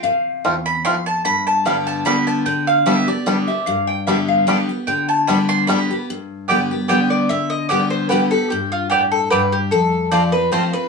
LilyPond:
<<
  \new Staff \with { instrumentName = "Resonator guitar played with a steel bar" } { \time 3/4 \key g \mixolydian \tempo 4 = 149 f''4~ f''16 r4. r16 | r2. | r2 r8 e''8 | f''8 g''8 e''8 f''8 g''8. r16 |
r2. | r2. | r2. | r2. |
r2. | }
  \new Staff \with { instrumentName = "Mandolin" } { \time 3/4 \key g \mixolydian r4. b''8 c'''8 a''8 | b''8 a''8 f''8 a''8 b''8 a''8 | g''8 f''8 e''8 d''4.~ | d''4 r2 |
g''8 a''8 b''8 c'''8 b''8. r16 | r4 <b g' d'' g''>8 r8 <b g' d'' g''>8 r8 | r4 <b g' d'' g''>8 r8 <b g' d'' g''>8 r8 | r4 <b g' d'' g''>8 r8 <b g' d'' g''>8 r8 |
r4 <c' f' c'' a''>8 r8 <c' f' c'' a''>8 r8 | }
  \new Staff \with { instrumentName = "Mandolin" } { \time 3/4 \key g \mixolydian r2. | r2. | r2. | r2. |
r2. | r2 g''8 d''8 | e''8 ees''8 d''8 c''8 b'8 a'8 | g'8 f'8 g'8 a'8 b'8 g'8 |
a'4 d''8 b'8 c''8 b'8 | }
  \new Staff \with { instrumentName = "Five-string banjo" } { \time 3/4 \key g \mixolydian r4 <a c' f'>8 r8 <a c' f'>8 r8 | r4 <g b d'>8 r8 <g b d'>8 r8 | r4 <g b d'>8 r8 <g b d'>8 r8 | r4 <g b d'>8 r8 <g b d'>8 r8 |
r4 <g b d'>8 r8 <g b d'>8 r8 | r2. | r2. | r2. |
r2. | }
  \new Staff \with { instrumentName = "Steel-string acoustic guitar" } { \time 3/4 \key g \mixolydian << { r2. | r4 <d g b g'>4 <d g b g'>4 | r4 <d g b g'>8 <b g'>8 <d g b g'>8 <b g'>8 | r4 <d g b g'>4 <d g b g'>8 <b g'>8 |
r4 <d g b g'>4 <d g b g'>8 <b g'>8 | r4 <d g b g'>8 <b g'>8 <d g b g'>4 | r4 <d g b g'>4 <d g b g'>8 <b g'>8 | r2. |
r4 <f a c' f'>8 <c' f'>8 <f a c' f'>8 <c' f'>8 | } \\ { c4 e,4 f,4 | g,2 r4 | d2 r4 | g,2 r4 |
d2 r4 | g,2 r4 | d2 r4 | g,4 a,4 g,4 |
f,2 r4 | } >> }
>>